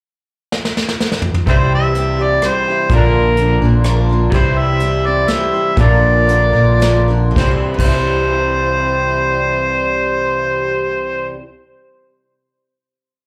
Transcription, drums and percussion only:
0.52 snare medium
0.65 snare medium
0.77 snare medium
0.89 snare medium
1.00 snare medium
1.12 snare medium
1.22 mid tom medium
1.34 mid tom medium
1.47 kick medium
1.47 closed hi-hat soft
1.95 closed hi-hat medium
2.42 cross-stick medium
2.42 closed hi-hat medium
2.89 kick loud
2.89 closed hi-hat medium
3.37 closed hi-hat medium
3.84 cross-stick medium
3.84 closed hi-hat medium
4.32 kick medium
4.32 closed hi-hat medium
4.80 closed hi-hat medium
5.28 snare medium
5.28 closed hi-hat medium
5.77 kick loud
5.77 closed hi-hat medium
6.28 closed hi-hat medium
6.81 snare medium
6.81 closed hi-hat medium
7.36 kick medium
7.36 snare medium
7.79 kick medium
7.79 crash medium

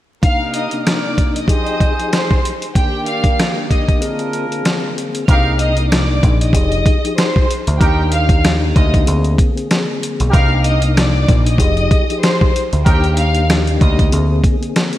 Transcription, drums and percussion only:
0.23 kick loud
0.23 closed hi-hat medium
0.54 closed hi-hat medium
0.71 closed hi-hat medium
0.87 snare loud
0.87 closed hi-hat medium
1.18 kick medium
1.18 closed hi-hat medium
1.36 closed hi-hat medium
1.48 kick medium
1.48 closed hi-hat medium
1.66 closed hi-hat soft
1.80 kick medium
1.80 closed hi-hat medium
1.99 closed hi-hat soft
2.13 snare loud
2.13 closed hi-hat medium
2.31 kick medium
2.45 closed hi-hat medium
2.62 closed hi-hat medium
2.75 kick loud
2.75 closed hi-hat medium
3.06 closed hi-hat medium
3.24 kick medium
3.24 closed hi-hat medium
3.39 snare loud
3.39 closed hi-hat medium
3.71 kick medium
3.71 closed hi-hat medium
3.88 kick medium
3.88 closed hi-hat medium
4.02 closed hi-hat medium
4.19 closed hi-hat soft
4.33 closed hi-hat medium
4.52 closed hi-hat soft
4.65 snare loud
4.65 closed hi-hat medium
4.98 closed hi-hat medium
5.15 closed hi-hat medium
5.28 kick loud
5.28 closed hi-hat medium
5.59 closed hi-hat medium
5.77 closed hi-hat medium
5.92 snare loud
5.92 closed hi-hat medium
6.23 kick medium
6.23 closed hi-hat medium
6.41 closed hi-hat medium
6.53 kick medium
6.53 closed hi-hat loud
6.72 closed hi-hat soft
6.86 kick loud
6.86 closed hi-hat medium
7.05 closed hi-hat soft
7.18 snare loud
7.18 closed hi-hat medium
7.36 kick medium
7.51 closed hi-hat medium
7.67 closed hi-hat medium
7.81 kick loud
7.81 closed hi-hat medium
8.12 closed hi-hat medium
8.29 kick loud
8.29 closed hi-hat medium
8.45 snare loud
8.45 closed hi-hat medium
8.76 kick medium
8.76 closed hi-hat medium
8.94 kick medium
8.94 closed hi-hat medium
9.07 closed hi-hat loud
9.24 closed hi-hat soft
9.38 kick loud
9.38 closed hi-hat medium
9.57 closed hi-hat soft
9.71 snare loud
9.71 closed hi-hat medium
10.03 closed hi-hat medium
10.20 closed hi-hat medium
10.33 kick loud
10.33 closed hi-hat medium
10.64 closed hi-hat medium
10.82 closed hi-hat medium
10.97 snare loud
10.97 closed hi-hat medium
11.28 kick medium
11.28 closed hi-hat medium
11.47 closed hi-hat medium
11.58 kick medium
11.58 closed hi-hat loud
11.77 closed hi-hat soft
11.91 kick loud
11.91 closed hi-hat medium
12.10 closed hi-hat soft
12.23 snare loud
12.23 closed hi-hat medium
12.41 kick loud
12.56 closed hi-hat medium
12.73 closed hi-hat medium
12.86 kick loud
12.86 closed hi-hat medium
13.04 closed hi-hat soft
13.17 closed hi-hat medium
13.35 closed hi-hat medium
13.50 snare loud
13.50 closed hi-hat medium
13.67 closed hi-hat soft
13.81 kick medium
13.81 closed hi-hat medium
13.99 kick medium
13.99 closed hi-hat medium
14.12 closed hi-hat loud
14.44 kick medium
14.44 closed hi-hat medium
14.63 closed hi-hat soft
14.76 snare loud
14.76 closed hi-hat medium
14.93 closed hi-hat soft

